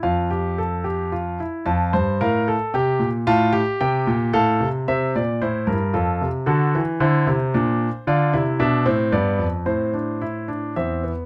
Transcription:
<<
  \new Staff \with { instrumentName = "Grand piano" } { \time 3/4 \key f \major \tempo 4 = 112 << { f''2~ f''8 r8 | a''4 f''4 g''4 | a''4 g''4 f''4 | e''8 d''8 c''8 bes'8 a'4 |
a'4 c''2 | \key a \minor d''4 e''4 d''4 | c''2 e''4 | } \\ { f'8 g'8 a'8 g'8 f'8 e'8 | f'8 c''8 bes'8 a'8 g'4 | f'8 g'4. a'4 | c'4 e'4 f'4 |
fis'4 e'4 d'4 | f'8 e'8 d'8 c'8 b4 | c'8 d'8 e'8 d'8 c'8 b8 | } >> }
  \new Staff \with { instrumentName = "Grand piano" } { \clef bass \time 3/4 \key f \major f,2~ f,8 r8 | f,8 g,8 a,4 c8 bes,8 | a,4 c8 bes,8 a,8 c8 | c8 bes,8 a,8 g,8 f,8 c8 |
d8 e8 d8 c8 bes,4 | \key a \minor d8 c8 b,8 a,8 g,8 f,8 | a,2 e,4 | }
>>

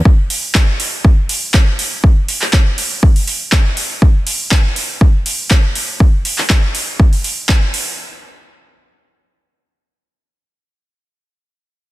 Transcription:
\new DrumStaff \with { instrumentName = "Drums" } \drummode { \time 4/4 \tempo 4 = 121 bd8 hho8 <hc bd>8 hho8 bd8 hho8 <hc bd>8 hho8 | bd8 hho16 hc16 <hc bd>8 hho8 bd16 hho16 hho8 <hc bd>8 hho8 | bd8 hho8 <hc bd>8 hho8 bd8 hho8 <hc bd>8 hho8 | bd8 hho16 hc16 <hc bd>8 hho8 bd16 hho16 hho8 <hc bd>8 hho8 |
r4 r4 r4 r4 | r4 r4 r4 r4 | }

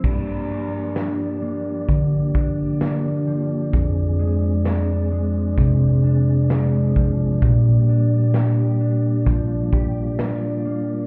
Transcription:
<<
  \new Staff \with { instrumentName = "Tonewheel organ" } { \time 4/4 \key g \minor \tempo 4 = 65 << { <d' d''>1~ | <d' d''>1~ | <d' d''>1 | } \\ { g'1 | aes'1 | g'2 f'2 | } >> }
  \new Staff \with { instrumentName = "Tonewheel organ" } { \time 4/4 \key g \minor << { bes1 | c'1 | bes1 | } \\ { f1~ | f1 | g1 | } >> }
  \new Staff \with { instrumentName = "Clean electric guitar" } { \time 4/4 \key g \minor g,8 bes8 d'8 bes8 d8 d'8 bes8 f8 | f,8 aes8 d'8 aes8 c8 d'8 aes8 f8 | bes,8 d'8 g'8 d'8 f8 g'8 d'8 bes8 | }
  \new DrumStaff \with { instrumentName = "Drums" } \drummode { \time 4/4 <cymc bd>4 <hh sn>4 <hh bd>8 bd8 <hh sn>4 | <hh bd>4 <hh sn>4 <hh bd>4 <hh sn>8 bd8 | <hh bd>4 <hh sn>4 <hh bd>8 bd8 <hh sn>4 | }
>>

